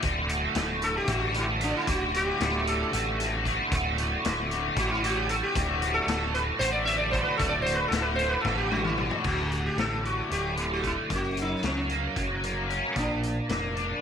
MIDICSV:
0, 0, Header, 1, 5, 480
1, 0, Start_track
1, 0, Key_signature, 2, "major"
1, 0, Tempo, 527704
1, 35, Time_signature, 7, 3, 24, 8
1, 12746, End_track
2, 0, Start_track
2, 0, Title_t, "Sitar"
2, 0, Program_c, 0, 104
2, 762, Note_on_c, 0, 69, 95
2, 880, Note_off_c, 0, 69, 0
2, 884, Note_on_c, 0, 67, 96
2, 996, Note_on_c, 0, 66, 87
2, 1002, Note_off_c, 0, 67, 0
2, 1241, Note_off_c, 0, 66, 0
2, 1258, Note_on_c, 0, 64, 84
2, 1319, Note_off_c, 0, 64, 0
2, 1488, Note_on_c, 0, 62, 78
2, 1592, Note_off_c, 0, 62, 0
2, 1608, Note_on_c, 0, 64, 82
2, 1711, Note_off_c, 0, 64, 0
2, 1714, Note_on_c, 0, 66, 99
2, 1959, Note_off_c, 0, 66, 0
2, 1968, Note_on_c, 0, 67, 113
2, 2436, Note_off_c, 0, 67, 0
2, 2440, Note_on_c, 0, 69, 82
2, 3117, Note_off_c, 0, 69, 0
2, 4360, Note_on_c, 0, 66, 88
2, 4471, Note_off_c, 0, 66, 0
2, 4475, Note_on_c, 0, 64, 76
2, 4582, Note_off_c, 0, 64, 0
2, 4587, Note_on_c, 0, 66, 86
2, 4699, Note_on_c, 0, 67, 77
2, 4709, Note_off_c, 0, 66, 0
2, 4816, Note_off_c, 0, 67, 0
2, 4820, Note_on_c, 0, 69, 76
2, 4865, Note_off_c, 0, 69, 0
2, 4940, Note_on_c, 0, 67, 81
2, 5388, Note_off_c, 0, 67, 0
2, 5403, Note_on_c, 0, 69, 94
2, 5765, Note_off_c, 0, 69, 0
2, 5768, Note_on_c, 0, 71, 93
2, 5835, Note_off_c, 0, 71, 0
2, 5995, Note_on_c, 0, 72, 110
2, 6110, Note_off_c, 0, 72, 0
2, 6114, Note_on_c, 0, 74, 98
2, 6229, Note_off_c, 0, 74, 0
2, 6233, Note_on_c, 0, 76, 106
2, 6341, Note_off_c, 0, 76, 0
2, 6345, Note_on_c, 0, 74, 89
2, 6464, Note_off_c, 0, 74, 0
2, 6468, Note_on_c, 0, 72, 85
2, 6514, Note_off_c, 0, 72, 0
2, 6580, Note_on_c, 0, 71, 85
2, 6704, Note_off_c, 0, 71, 0
2, 6708, Note_on_c, 0, 69, 95
2, 6814, Note_on_c, 0, 74, 96
2, 6835, Note_off_c, 0, 69, 0
2, 6926, Note_off_c, 0, 74, 0
2, 6930, Note_on_c, 0, 72, 99
2, 7048, Note_on_c, 0, 71, 89
2, 7066, Note_off_c, 0, 72, 0
2, 7166, Note_off_c, 0, 71, 0
2, 7169, Note_on_c, 0, 69, 92
2, 7292, Note_off_c, 0, 69, 0
2, 7296, Note_on_c, 0, 71, 81
2, 7341, Note_off_c, 0, 71, 0
2, 7418, Note_on_c, 0, 72, 93
2, 7539, Note_on_c, 0, 71, 95
2, 7564, Note_off_c, 0, 72, 0
2, 7647, Note_off_c, 0, 71, 0
2, 7651, Note_on_c, 0, 69, 83
2, 7786, Note_off_c, 0, 69, 0
2, 7802, Note_on_c, 0, 67, 85
2, 7935, Note_on_c, 0, 66, 81
2, 7936, Note_off_c, 0, 67, 0
2, 8041, Note_off_c, 0, 66, 0
2, 8044, Note_on_c, 0, 64, 70
2, 8387, Note_off_c, 0, 64, 0
2, 8434, Note_on_c, 0, 66, 89
2, 8788, Note_on_c, 0, 67, 89
2, 8799, Note_off_c, 0, 66, 0
2, 8897, Note_off_c, 0, 67, 0
2, 8908, Note_on_c, 0, 69, 91
2, 9147, Note_off_c, 0, 69, 0
2, 9151, Note_on_c, 0, 66, 83
2, 9387, Note_off_c, 0, 66, 0
2, 9390, Note_on_c, 0, 67, 87
2, 9722, Note_off_c, 0, 67, 0
2, 9764, Note_on_c, 0, 66, 74
2, 9866, Note_off_c, 0, 66, 0
2, 9888, Note_on_c, 0, 64, 80
2, 9949, Note_off_c, 0, 64, 0
2, 10146, Note_on_c, 0, 66, 97
2, 10350, Note_off_c, 0, 66, 0
2, 10386, Note_on_c, 0, 63, 84
2, 10595, Note_off_c, 0, 63, 0
2, 10599, Note_on_c, 0, 61, 71
2, 11518, Note_off_c, 0, 61, 0
2, 11812, Note_on_c, 0, 62, 79
2, 12746, Note_off_c, 0, 62, 0
2, 12746, End_track
3, 0, Start_track
3, 0, Title_t, "Overdriven electric guitar"
3, 0, Program_c, 1, 29
3, 23, Note_on_c, 1, 38, 87
3, 34, Note_on_c, 1, 45, 99
3, 36, Note_on_c, 1, 50, 103
3, 41, Note_on_c, 1, 57, 96
3, 48, Note_on_c, 1, 66, 90
3, 259, Note_off_c, 1, 66, 0
3, 263, Note_on_c, 1, 66, 58
3, 270, Note_off_c, 1, 57, 0
3, 273, Note_on_c, 1, 57, 59
3, 282, Note_off_c, 1, 50, 0
3, 285, Note_on_c, 1, 50, 57
3, 496, Note_off_c, 1, 45, 0
3, 507, Note_on_c, 1, 45, 74
3, 512, Note_off_c, 1, 50, 0
3, 515, Note_on_c, 1, 50, 77
3, 516, Note_off_c, 1, 57, 0
3, 519, Note_on_c, 1, 57, 88
3, 522, Note_off_c, 1, 66, 0
3, 526, Note_on_c, 1, 66, 80
3, 969, Note_off_c, 1, 45, 0
3, 975, Note_off_c, 1, 38, 0
3, 978, Note_on_c, 1, 38, 94
3, 980, Note_on_c, 1, 45, 98
3, 981, Note_off_c, 1, 50, 0
3, 984, Note_on_c, 1, 50, 104
3, 990, Note_off_c, 1, 57, 0
3, 994, Note_on_c, 1, 57, 102
3, 995, Note_off_c, 1, 66, 0
3, 999, Note_on_c, 1, 66, 101
3, 1220, Note_off_c, 1, 66, 0
3, 1224, Note_on_c, 1, 66, 73
3, 1237, Note_off_c, 1, 57, 0
3, 1241, Note_on_c, 1, 57, 61
3, 1245, Note_off_c, 1, 50, 0
3, 1249, Note_on_c, 1, 50, 52
3, 1451, Note_off_c, 1, 45, 0
3, 1461, Note_on_c, 1, 45, 72
3, 1466, Note_off_c, 1, 50, 0
3, 1470, Note_on_c, 1, 50, 71
3, 1472, Note_off_c, 1, 57, 0
3, 1476, Note_off_c, 1, 66, 0
3, 1476, Note_on_c, 1, 57, 77
3, 1480, Note_on_c, 1, 66, 80
3, 1699, Note_off_c, 1, 38, 0
3, 1701, Note_off_c, 1, 45, 0
3, 1703, Note_on_c, 1, 38, 88
3, 1708, Note_off_c, 1, 50, 0
3, 1712, Note_on_c, 1, 45, 95
3, 1712, Note_on_c, 1, 50, 98
3, 1715, Note_off_c, 1, 57, 0
3, 1719, Note_on_c, 1, 57, 99
3, 1720, Note_off_c, 1, 66, 0
3, 1724, Note_on_c, 1, 66, 106
3, 1942, Note_off_c, 1, 66, 0
3, 1946, Note_on_c, 1, 66, 65
3, 1954, Note_off_c, 1, 57, 0
3, 1957, Note_on_c, 1, 57, 62
3, 1967, Note_off_c, 1, 50, 0
3, 1971, Note_on_c, 1, 50, 52
3, 2170, Note_off_c, 1, 45, 0
3, 2181, Note_on_c, 1, 45, 68
3, 2185, Note_off_c, 1, 50, 0
3, 2189, Note_on_c, 1, 50, 79
3, 2194, Note_off_c, 1, 57, 0
3, 2198, Note_off_c, 1, 66, 0
3, 2198, Note_on_c, 1, 57, 86
3, 2201, Note_on_c, 1, 66, 87
3, 2650, Note_off_c, 1, 38, 0
3, 2654, Note_off_c, 1, 45, 0
3, 2654, Note_on_c, 1, 38, 97
3, 2665, Note_on_c, 1, 45, 93
3, 2666, Note_off_c, 1, 50, 0
3, 2666, Note_off_c, 1, 57, 0
3, 2669, Note_on_c, 1, 57, 102
3, 2670, Note_on_c, 1, 50, 100
3, 2673, Note_off_c, 1, 66, 0
3, 2676, Note_on_c, 1, 66, 96
3, 2900, Note_off_c, 1, 66, 0
3, 2904, Note_on_c, 1, 66, 66
3, 2910, Note_off_c, 1, 57, 0
3, 2914, Note_on_c, 1, 57, 58
3, 2921, Note_off_c, 1, 50, 0
3, 2925, Note_on_c, 1, 50, 54
3, 3137, Note_off_c, 1, 45, 0
3, 3148, Note_on_c, 1, 45, 64
3, 3152, Note_off_c, 1, 50, 0
3, 3156, Note_on_c, 1, 50, 84
3, 3157, Note_off_c, 1, 57, 0
3, 3160, Note_on_c, 1, 57, 82
3, 3167, Note_off_c, 1, 66, 0
3, 3171, Note_on_c, 1, 66, 72
3, 3381, Note_off_c, 1, 45, 0
3, 3382, Note_off_c, 1, 38, 0
3, 3386, Note_on_c, 1, 38, 93
3, 3390, Note_off_c, 1, 50, 0
3, 3392, Note_on_c, 1, 45, 93
3, 3393, Note_on_c, 1, 50, 93
3, 3399, Note_off_c, 1, 57, 0
3, 3403, Note_on_c, 1, 57, 97
3, 3404, Note_off_c, 1, 66, 0
3, 3408, Note_on_c, 1, 66, 95
3, 3616, Note_off_c, 1, 66, 0
3, 3620, Note_on_c, 1, 66, 68
3, 3631, Note_off_c, 1, 57, 0
3, 3634, Note_on_c, 1, 57, 65
3, 3640, Note_off_c, 1, 50, 0
3, 3644, Note_on_c, 1, 50, 52
3, 3851, Note_off_c, 1, 45, 0
3, 3862, Note_on_c, 1, 45, 74
3, 3867, Note_off_c, 1, 50, 0
3, 3870, Note_on_c, 1, 50, 82
3, 3873, Note_off_c, 1, 57, 0
3, 3876, Note_on_c, 1, 57, 83
3, 3880, Note_off_c, 1, 66, 0
3, 3883, Note_on_c, 1, 66, 79
3, 4330, Note_off_c, 1, 45, 0
3, 4332, Note_off_c, 1, 38, 0
3, 4335, Note_on_c, 1, 38, 88
3, 4341, Note_on_c, 1, 45, 99
3, 4346, Note_off_c, 1, 50, 0
3, 4350, Note_on_c, 1, 50, 96
3, 4351, Note_off_c, 1, 57, 0
3, 4352, Note_off_c, 1, 66, 0
3, 4354, Note_on_c, 1, 57, 108
3, 4356, Note_on_c, 1, 66, 110
3, 4573, Note_off_c, 1, 66, 0
3, 4577, Note_on_c, 1, 66, 67
3, 4587, Note_off_c, 1, 57, 0
3, 4590, Note_on_c, 1, 57, 66
3, 4596, Note_off_c, 1, 50, 0
3, 4600, Note_on_c, 1, 50, 64
3, 4805, Note_off_c, 1, 45, 0
3, 4816, Note_on_c, 1, 45, 74
3, 4820, Note_off_c, 1, 50, 0
3, 4823, Note_off_c, 1, 57, 0
3, 4824, Note_on_c, 1, 50, 81
3, 4826, Note_on_c, 1, 57, 88
3, 4832, Note_off_c, 1, 66, 0
3, 4835, Note_on_c, 1, 66, 75
3, 5048, Note_off_c, 1, 45, 0
3, 5050, Note_off_c, 1, 38, 0
3, 5053, Note_on_c, 1, 38, 96
3, 5059, Note_on_c, 1, 45, 96
3, 5064, Note_off_c, 1, 50, 0
3, 5068, Note_off_c, 1, 57, 0
3, 5068, Note_on_c, 1, 50, 104
3, 5072, Note_off_c, 1, 66, 0
3, 5072, Note_on_c, 1, 57, 115
3, 5075, Note_on_c, 1, 66, 100
3, 5286, Note_off_c, 1, 66, 0
3, 5289, Note_on_c, 1, 66, 66
3, 5295, Note_off_c, 1, 57, 0
3, 5299, Note_on_c, 1, 57, 60
3, 5302, Note_off_c, 1, 50, 0
3, 5305, Note_on_c, 1, 50, 53
3, 5515, Note_off_c, 1, 45, 0
3, 5525, Note_on_c, 1, 45, 83
3, 5531, Note_off_c, 1, 50, 0
3, 5532, Note_off_c, 1, 57, 0
3, 5535, Note_on_c, 1, 50, 88
3, 5536, Note_on_c, 1, 57, 78
3, 5545, Note_off_c, 1, 66, 0
3, 5548, Note_on_c, 1, 66, 95
3, 5989, Note_off_c, 1, 38, 0
3, 5991, Note_off_c, 1, 45, 0
3, 5992, Note_on_c, 1, 38, 98
3, 6002, Note_on_c, 1, 45, 104
3, 6006, Note_off_c, 1, 50, 0
3, 6010, Note_on_c, 1, 50, 89
3, 6011, Note_off_c, 1, 57, 0
3, 6013, Note_off_c, 1, 66, 0
3, 6015, Note_on_c, 1, 57, 98
3, 6017, Note_on_c, 1, 66, 105
3, 6240, Note_off_c, 1, 66, 0
3, 6244, Note_on_c, 1, 66, 66
3, 6253, Note_off_c, 1, 57, 0
3, 6256, Note_on_c, 1, 57, 70
3, 6263, Note_off_c, 1, 50, 0
3, 6267, Note_on_c, 1, 50, 55
3, 6474, Note_off_c, 1, 45, 0
3, 6485, Note_off_c, 1, 50, 0
3, 6485, Note_on_c, 1, 45, 76
3, 6489, Note_on_c, 1, 50, 82
3, 6495, Note_off_c, 1, 57, 0
3, 6497, Note_off_c, 1, 66, 0
3, 6499, Note_on_c, 1, 57, 82
3, 6501, Note_on_c, 1, 66, 78
3, 6707, Note_off_c, 1, 45, 0
3, 6714, Note_off_c, 1, 38, 0
3, 6715, Note_off_c, 1, 50, 0
3, 6718, Note_on_c, 1, 38, 91
3, 6718, Note_on_c, 1, 45, 103
3, 6720, Note_off_c, 1, 57, 0
3, 6721, Note_off_c, 1, 66, 0
3, 6726, Note_on_c, 1, 50, 99
3, 6731, Note_on_c, 1, 57, 96
3, 6732, Note_on_c, 1, 66, 99
3, 6946, Note_off_c, 1, 66, 0
3, 6956, Note_on_c, 1, 66, 78
3, 6958, Note_off_c, 1, 57, 0
3, 6968, Note_off_c, 1, 50, 0
3, 6968, Note_on_c, 1, 57, 68
3, 6979, Note_on_c, 1, 50, 56
3, 7192, Note_off_c, 1, 45, 0
3, 7203, Note_off_c, 1, 50, 0
3, 7203, Note_on_c, 1, 45, 92
3, 7209, Note_off_c, 1, 38, 0
3, 7211, Note_off_c, 1, 57, 0
3, 7213, Note_on_c, 1, 50, 87
3, 7214, Note_off_c, 1, 66, 0
3, 7222, Note_on_c, 1, 57, 90
3, 7225, Note_on_c, 1, 66, 85
3, 7675, Note_off_c, 1, 45, 0
3, 7680, Note_off_c, 1, 50, 0
3, 7683, Note_on_c, 1, 38, 97
3, 7686, Note_on_c, 1, 45, 98
3, 7690, Note_off_c, 1, 57, 0
3, 7691, Note_on_c, 1, 50, 105
3, 7693, Note_off_c, 1, 66, 0
3, 7701, Note_on_c, 1, 57, 98
3, 7704, Note_on_c, 1, 66, 112
3, 7910, Note_off_c, 1, 66, 0
3, 7921, Note_on_c, 1, 66, 65
3, 7923, Note_off_c, 1, 57, 0
3, 7926, Note_off_c, 1, 50, 0
3, 7933, Note_on_c, 1, 57, 67
3, 7937, Note_on_c, 1, 50, 55
3, 8152, Note_off_c, 1, 45, 0
3, 8163, Note_on_c, 1, 45, 76
3, 8164, Note_off_c, 1, 50, 0
3, 8170, Note_off_c, 1, 57, 0
3, 8172, Note_off_c, 1, 38, 0
3, 8175, Note_on_c, 1, 50, 78
3, 8176, Note_off_c, 1, 66, 0
3, 8181, Note_on_c, 1, 57, 82
3, 8187, Note_on_c, 1, 66, 89
3, 8397, Note_on_c, 1, 38, 70
3, 8398, Note_off_c, 1, 45, 0
3, 8404, Note_off_c, 1, 50, 0
3, 8407, Note_off_c, 1, 57, 0
3, 8410, Note_off_c, 1, 66, 0
3, 8882, Note_on_c, 1, 45, 68
3, 9122, Note_on_c, 1, 50, 62
3, 9354, Note_off_c, 1, 45, 0
3, 9365, Note_on_c, 1, 45, 64
3, 9596, Note_off_c, 1, 50, 0
3, 9607, Note_on_c, 1, 50, 60
3, 9611, Note_off_c, 1, 38, 0
3, 9839, Note_on_c, 1, 57, 66
3, 10088, Note_on_c, 1, 42, 67
3, 10092, Note_off_c, 1, 57, 0
3, 10096, Note_off_c, 1, 45, 0
3, 10096, Note_off_c, 1, 50, 0
3, 10574, Note_on_c, 1, 54, 68
3, 10822, Note_on_c, 1, 58, 64
3, 11052, Note_off_c, 1, 54, 0
3, 11063, Note_on_c, 1, 54, 68
3, 11299, Note_off_c, 1, 42, 0
3, 11304, Note_off_c, 1, 58, 0
3, 11315, Note_on_c, 1, 58, 56
3, 11549, Note_on_c, 1, 61, 66
3, 11787, Note_off_c, 1, 54, 0
3, 11789, Note_off_c, 1, 61, 0
3, 11790, Note_on_c, 1, 46, 74
3, 11792, Note_off_c, 1, 58, 0
3, 12269, Note_on_c, 1, 58, 67
3, 12515, Note_on_c, 1, 62, 69
3, 12738, Note_off_c, 1, 58, 0
3, 12746, Note_off_c, 1, 46, 0
3, 12746, Note_off_c, 1, 62, 0
3, 12746, End_track
4, 0, Start_track
4, 0, Title_t, "Picked electric bass"
4, 0, Program_c, 2, 34
4, 28, Note_on_c, 2, 26, 99
4, 418, Note_off_c, 2, 26, 0
4, 503, Note_on_c, 2, 26, 87
4, 895, Note_off_c, 2, 26, 0
4, 979, Note_on_c, 2, 33, 96
4, 1566, Note_off_c, 2, 33, 0
4, 1705, Note_on_c, 2, 26, 92
4, 2095, Note_off_c, 2, 26, 0
4, 2187, Note_on_c, 2, 26, 86
4, 2576, Note_off_c, 2, 26, 0
4, 2668, Note_on_c, 2, 33, 96
4, 3250, Note_off_c, 2, 33, 0
4, 3376, Note_on_c, 2, 26, 97
4, 3768, Note_off_c, 2, 26, 0
4, 3868, Note_on_c, 2, 26, 84
4, 4255, Note_off_c, 2, 26, 0
4, 4333, Note_on_c, 2, 33, 98
4, 4920, Note_off_c, 2, 33, 0
4, 5052, Note_on_c, 2, 26, 102
4, 5445, Note_off_c, 2, 26, 0
4, 5515, Note_on_c, 2, 26, 81
4, 5915, Note_off_c, 2, 26, 0
4, 6000, Note_on_c, 2, 33, 99
4, 6591, Note_off_c, 2, 33, 0
4, 6729, Note_on_c, 2, 26, 106
4, 7123, Note_off_c, 2, 26, 0
4, 7193, Note_on_c, 2, 26, 85
4, 7593, Note_off_c, 2, 26, 0
4, 7685, Note_on_c, 2, 33, 107
4, 8275, Note_off_c, 2, 33, 0
4, 8413, Note_on_c, 2, 26, 91
4, 8805, Note_off_c, 2, 26, 0
4, 8883, Note_on_c, 2, 33, 87
4, 9280, Note_off_c, 2, 33, 0
4, 9379, Note_on_c, 2, 26, 79
4, 9965, Note_off_c, 2, 26, 0
4, 10098, Note_on_c, 2, 30, 93
4, 10490, Note_off_c, 2, 30, 0
4, 10580, Note_on_c, 2, 37, 81
4, 10972, Note_off_c, 2, 37, 0
4, 11061, Note_on_c, 2, 30, 85
4, 11648, Note_off_c, 2, 30, 0
4, 11792, Note_on_c, 2, 34, 96
4, 12180, Note_off_c, 2, 34, 0
4, 12272, Note_on_c, 2, 29, 78
4, 12661, Note_off_c, 2, 29, 0
4, 12746, End_track
5, 0, Start_track
5, 0, Title_t, "Drums"
5, 21, Note_on_c, 9, 42, 93
5, 27, Note_on_c, 9, 36, 118
5, 112, Note_off_c, 9, 42, 0
5, 118, Note_off_c, 9, 36, 0
5, 266, Note_on_c, 9, 42, 64
5, 357, Note_off_c, 9, 42, 0
5, 499, Note_on_c, 9, 42, 82
5, 510, Note_on_c, 9, 38, 99
5, 590, Note_off_c, 9, 42, 0
5, 601, Note_off_c, 9, 38, 0
5, 744, Note_on_c, 9, 42, 67
5, 835, Note_off_c, 9, 42, 0
5, 977, Note_on_c, 9, 42, 103
5, 982, Note_on_c, 9, 36, 109
5, 1068, Note_off_c, 9, 42, 0
5, 1073, Note_off_c, 9, 36, 0
5, 1221, Note_on_c, 9, 42, 69
5, 1311, Note_off_c, 9, 42, 0
5, 1462, Note_on_c, 9, 42, 69
5, 1553, Note_off_c, 9, 42, 0
5, 1705, Note_on_c, 9, 36, 117
5, 1705, Note_on_c, 9, 42, 99
5, 1795, Note_off_c, 9, 36, 0
5, 1796, Note_off_c, 9, 42, 0
5, 1949, Note_on_c, 9, 42, 74
5, 2040, Note_off_c, 9, 42, 0
5, 2186, Note_on_c, 9, 42, 86
5, 2197, Note_on_c, 9, 38, 110
5, 2277, Note_off_c, 9, 42, 0
5, 2288, Note_off_c, 9, 38, 0
5, 2430, Note_on_c, 9, 42, 67
5, 2521, Note_off_c, 9, 42, 0
5, 2665, Note_on_c, 9, 42, 88
5, 2756, Note_off_c, 9, 42, 0
5, 2909, Note_on_c, 9, 42, 68
5, 2919, Note_on_c, 9, 38, 35
5, 2999, Note_off_c, 9, 42, 0
5, 3010, Note_off_c, 9, 38, 0
5, 3142, Note_on_c, 9, 36, 76
5, 3147, Note_on_c, 9, 42, 62
5, 3233, Note_off_c, 9, 36, 0
5, 3238, Note_off_c, 9, 42, 0
5, 3379, Note_on_c, 9, 42, 93
5, 3382, Note_on_c, 9, 36, 107
5, 3470, Note_off_c, 9, 42, 0
5, 3473, Note_off_c, 9, 36, 0
5, 3620, Note_on_c, 9, 42, 69
5, 3711, Note_off_c, 9, 42, 0
5, 3861, Note_on_c, 9, 42, 80
5, 3872, Note_on_c, 9, 38, 100
5, 3952, Note_off_c, 9, 42, 0
5, 3963, Note_off_c, 9, 38, 0
5, 4102, Note_on_c, 9, 42, 57
5, 4193, Note_off_c, 9, 42, 0
5, 4333, Note_on_c, 9, 42, 85
5, 4336, Note_on_c, 9, 36, 104
5, 4424, Note_off_c, 9, 42, 0
5, 4427, Note_off_c, 9, 36, 0
5, 4582, Note_on_c, 9, 42, 63
5, 4673, Note_off_c, 9, 42, 0
5, 4811, Note_on_c, 9, 42, 71
5, 4902, Note_off_c, 9, 42, 0
5, 5052, Note_on_c, 9, 42, 92
5, 5053, Note_on_c, 9, 36, 118
5, 5143, Note_off_c, 9, 42, 0
5, 5144, Note_off_c, 9, 36, 0
5, 5292, Note_on_c, 9, 42, 70
5, 5383, Note_off_c, 9, 42, 0
5, 5530, Note_on_c, 9, 42, 93
5, 5540, Note_on_c, 9, 38, 111
5, 5621, Note_off_c, 9, 42, 0
5, 5631, Note_off_c, 9, 38, 0
5, 5772, Note_on_c, 9, 42, 62
5, 5863, Note_off_c, 9, 42, 0
5, 6010, Note_on_c, 9, 42, 105
5, 6101, Note_off_c, 9, 42, 0
5, 6250, Note_on_c, 9, 42, 73
5, 6341, Note_off_c, 9, 42, 0
5, 6488, Note_on_c, 9, 36, 80
5, 6491, Note_on_c, 9, 42, 72
5, 6579, Note_off_c, 9, 36, 0
5, 6582, Note_off_c, 9, 42, 0
5, 6727, Note_on_c, 9, 36, 113
5, 6728, Note_on_c, 9, 42, 95
5, 6818, Note_off_c, 9, 36, 0
5, 6819, Note_off_c, 9, 42, 0
5, 6971, Note_on_c, 9, 42, 73
5, 7062, Note_off_c, 9, 42, 0
5, 7203, Note_on_c, 9, 42, 84
5, 7214, Note_on_c, 9, 38, 107
5, 7294, Note_off_c, 9, 42, 0
5, 7305, Note_off_c, 9, 38, 0
5, 7446, Note_on_c, 9, 42, 62
5, 7457, Note_on_c, 9, 38, 29
5, 7537, Note_off_c, 9, 42, 0
5, 7548, Note_off_c, 9, 38, 0
5, 7685, Note_on_c, 9, 36, 120
5, 7693, Note_on_c, 9, 38, 63
5, 7776, Note_off_c, 9, 36, 0
5, 7784, Note_off_c, 9, 38, 0
5, 7926, Note_on_c, 9, 48, 78
5, 8017, Note_off_c, 9, 48, 0
5, 8049, Note_on_c, 9, 47, 75
5, 8140, Note_off_c, 9, 47, 0
5, 8166, Note_on_c, 9, 45, 84
5, 8257, Note_off_c, 9, 45, 0
5, 8286, Note_on_c, 9, 43, 88
5, 8377, Note_off_c, 9, 43, 0
5, 8407, Note_on_c, 9, 49, 92
5, 8409, Note_on_c, 9, 36, 107
5, 8498, Note_off_c, 9, 49, 0
5, 8500, Note_off_c, 9, 36, 0
5, 8656, Note_on_c, 9, 42, 55
5, 8747, Note_off_c, 9, 42, 0
5, 8894, Note_on_c, 9, 42, 66
5, 8905, Note_on_c, 9, 38, 96
5, 8985, Note_off_c, 9, 42, 0
5, 8996, Note_off_c, 9, 38, 0
5, 9144, Note_on_c, 9, 42, 54
5, 9235, Note_off_c, 9, 42, 0
5, 9381, Note_on_c, 9, 42, 86
5, 9472, Note_off_c, 9, 42, 0
5, 9617, Note_on_c, 9, 42, 64
5, 9708, Note_off_c, 9, 42, 0
5, 9858, Note_on_c, 9, 36, 73
5, 9861, Note_on_c, 9, 42, 58
5, 9949, Note_off_c, 9, 36, 0
5, 9952, Note_off_c, 9, 42, 0
5, 10098, Note_on_c, 9, 36, 101
5, 10098, Note_on_c, 9, 42, 82
5, 10189, Note_off_c, 9, 36, 0
5, 10189, Note_off_c, 9, 42, 0
5, 10342, Note_on_c, 9, 42, 61
5, 10433, Note_off_c, 9, 42, 0
5, 10576, Note_on_c, 9, 42, 73
5, 10587, Note_on_c, 9, 38, 100
5, 10667, Note_off_c, 9, 42, 0
5, 10678, Note_off_c, 9, 38, 0
5, 10819, Note_on_c, 9, 42, 53
5, 10909, Note_off_c, 9, 42, 0
5, 11063, Note_on_c, 9, 36, 101
5, 11063, Note_on_c, 9, 42, 73
5, 11154, Note_off_c, 9, 36, 0
5, 11154, Note_off_c, 9, 42, 0
5, 11310, Note_on_c, 9, 42, 59
5, 11401, Note_off_c, 9, 42, 0
5, 11553, Note_on_c, 9, 42, 51
5, 11644, Note_off_c, 9, 42, 0
5, 11788, Note_on_c, 9, 36, 108
5, 11789, Note_on_c, 9, 42, 75
5, 11879, Note_off_c, 9, 36, 0
5, 11880, Note_off_c, 9, 42, 0
5, 12036, Note_on_c, 9, 42, 56
5, 12127, Note_off_c, 9, 42, 0
5, 12273, Note_on_c, 9, 42, 75
5, 12284, Note_on_c, 9, 38, 101
5, 12364, Note_off_c, 9, 42, 0
5, 12375, Note_off_c, 9, 38, 0
5, 12521, Note_on_c, 9, 42, 47
5, 12612, Note_off_c, 9, 42, 0
5, 12746, End_track
0, 0, End_of_file